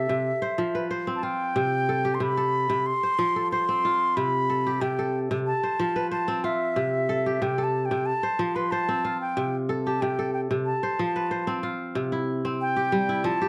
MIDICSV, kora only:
0, 0, Header, 1, 2, 480
1, 0, Start_track
1, 0, Key_signature, 0, "major"
1, 0, Tempo, 650054
1, 1148, Time_signature, 4, 2, 24, 8
1, 9957, End_track
2, 0, Start_track
2, 0, Title_t, "Kora"
2, 0, Program_c, 0, 46
2, 0, Note_on_c, 0, 60, 72
2, 0, Note_on_c, 0, 65, 66
2, 0, Note_on_c, 0, 67, 60
2, 0, Note_on_c, 0, 69, 56
2, 69, Note_on_c, 0, 48, 70
2, 94, Note_off_c, 0, 65, 0
2, 190, Note_off_c, 0, 60, 0
2, 224, Note_off_c, 0, 48, 0
2, 309, Note_on_c, 0, 72, 62
2, 429, Note_on_c, 0, 53, 76
2, 552, Note_on_c, 0, 71, 59
2, 623, Note_off_c, 0, 67, 0
2, 666, Note_off_c, 0, 72, 0
2, 669, Note_on_c, 0, 72, 59
2, 791, Note_on_c, 0, 60, 65
2, 798, Note_off_c, 0, 69, 0
2, 908, Note_on_c, 0, 65, 58
2, 1149, Note_on_c, 0, 48, 72
2, 1185, Note_off_c, 0, 53, 0
2, 1194, Note_off_c, 0, 71, 0
2, 1394, Note_on_c, 0, 69, 59
2, 1512, Note_on_c, 0, 67, 60
2, 1546, Note_off_c, 0, 72, 0
2, 1617, Note_off_c, 0, 48, 0
2, 1626, Note_on_c, 0, 48, 72
2, 1750, Note_off_c, 0, 69, 0
2, 1753, Note_on_c, 0, 69, 62
2, 1981, Note_off_c, 0, 48, 0
2, 1990, Note_on_c, 0, 48, 74
2, 2026, Note_off_c, 0, 65, 0
2, 2121, Note_off_c, 0, 60, 0
2, 2147, Note_off_c, 0, 48, 0
2, 2240, Note_on_c, 0, 72, 63
2, 2352, Note_on_c, 0, 53, 82
2, 2478, Note_off_c, 0, 69, 0
2, 2481, Note_on_c, 0, 69, 61
2, 2555, Note_off_c, 0, 67, 0
2, 2598, Note_off_c, 0, 72, 0
2, 2601, Note_on_c, 0, 72, 66
2, 2722, Note_on_c, 0, 60, 71
2, 2841, Note_on_c, 0, 65, 65
2, 3078, Note_on_c, 0, 48, 82
2, 3108, Note_off_c, 0, 53, 0
2, 3317, Note_off_c, 0, 69, 0
2, 3320, Note_on_c, 0, 69, 59
2, 3445, Note_on_c, 0, 67, 56
2, 3478, Note_off_c, 0, 72, 0
2, 3546, Note_off_c, 0, 48, 0
2, 3555, Note_on_c, 0, 48, 77
2, 3680, Note_off_c, 0, 69, 0
2, 3682, Note_on_c, 0, 69, 62
2, 3911, Note_off_c, 0, 48, 0
2, 3920, Note_on_c, 0, 48, 77
2, 3959, Note_off_c, 0, 65, 0
2, 4051, Note_off_c, 0, 60, 0
2, 4069, Note_off_c, 0, 48, 0
2, 4160, Note_on_c, 0, 72, 61
2, 4279, Note_on_c, 0, 53, 77
2, 4399, Note_on_c, 0, 71, 62
2, 4488, Note_off_c, 0, 67, 0
2, 4512, Note_off_c, 0, 72, 0
2, 4515, Note_on_c, 0, 72, 70
2, 4636, Note_on_c, 0, 60, 73
2, 4655, Note_off_c, 0, 69, 0
2, 4755, Note_on_c, 0, 65, 64
2, 4993, Note_on_c, 0, 48, 79
2, 5029, Note_off_c, 0, 53, 0
2, 5037, Note_off_c, 0, 71, 0
2, 5236, Note_on_c, 0, 69, 65
2, 5363, Note_on_c, 0, 67, 58
2, 5392, Note_off_c, 0, 72, 0
2, 5468, Note_off_c, 0, 48, 0
2, 5477, Note_on_c, 0, 48, 80
2, 5595, Note_off_c, 0, 69, 0
2, 5598, Note_on_c, 0, 69, 62
2, 5832, Note_off_c, 0, 48, 0
2, 5841, Note_on_c, 0, 48, 74
2, 5872, Note_off_c, 0, 65, 0
2, 5965, Note_off_c, 0, 60, 0
2, 5989, Note_off_c, 0, 48, 0
2, 6078, Note_on_c, 0, 72, 64
2, 6196, Note_on_c, 0, 53, 78
2, 6319, Note_on_c, 0, 71, 61
2, 6406, Note_off_c, 0, 67, 0
2, 6436, Note_off_c, 0, 72, 0
2, 6439, Note_on_c, 0, 72, 67
2, 6561, Note_on_c, 0, 60, 69
2, 6571, Note_off_c, 0, 69, 0
2, 6679, Note_on_c, 0, 65, 60
2, 6917, Note_on_c, 0, 48, 76
2, 6948, Note_off_c, 0, 53, 0
2, 6962, Note_off_c, 0, 71, 0
2, 7156, Note_on_c, 0, 69, 64
2, 7285, Note_on_c, 0, 67, 54
2, 7316, Note_off_c, 0, 72, 0
2, 7391, Note_off_c, 0, 48, 0
2, 7400, Note_on_c, 0, 48, 79
2, 7519, Note_off_c, 0, 69, 0
2, 7522, Note_on_c, 0, 69, 58
2, 7749, Note_off_c, 0, 48, 0
2, 7758, Note_on_c, 0, 48, 74
2, 7797, Note_off_c, 0, 65, 0
2, 7890, Note_off_c, 0, 60, 0
2, 7907, Note_off_c, 0, 48, 0
2, 7997, Note_on_c, 0, 72, 63
2, 8118, Note_on_c, 0, 53, 74
2, 8239, Note_on_c, 0, 71, 62
2, 8328, Note_off_c, 0, 67, 0
2, 8348, Note_off_c, 0, 72, 0
2, 8351, Note_on_c, 0, 72, 66
2, 8470, Note_on_c, 0, 60, 72
2, 8495, Note_off_c, 0, 69, 0
2, 8588, Note_on_c, 0, 65, 67
2, 8826, Note_on_c, 0, 48, 81
2, 8864, Note_off_c, 0, 53, 0
2, 8871, Note_off_c, 0, 71, 0
2, 8951, Note_on_c, 0, 64, 56
2, 8995, Note_off_c, 0, 65, 0
2, 9189, Note_off_c, 0, 60, 0
2, 9191, Note_on_c, 0, 60, 72
2, 9228, Note_off_c, 0, 72, 0
2, 9425, Note_on_c, 0, 67, 61
2, 9542, Note_on_c, 0, 55, 82
2, 9663, Note_off_c, 0, 64, 0
2, 9666, Note_on_c, 0, 64, 66
2, 9778, Note_on_c, 0, 53, 85
2, 9821, Note_off_c, 0, 48, 0
2, 9821, Note_off_c, 0, 55, 0
2, 9903, Note_off_c, 0, 67, 0
2, 9906, Note_on_c, 0, 67, 71
2, 9957, Note_off_c, 0, 53, 0
2, 9957, Note_off_c, 0, 60, 0
2, 9957, Note_off_c, 0, 64, 0
2, 9957, Note_off_c, 0, 67, 0
2, 9957, End_track
0, 0, End_of_file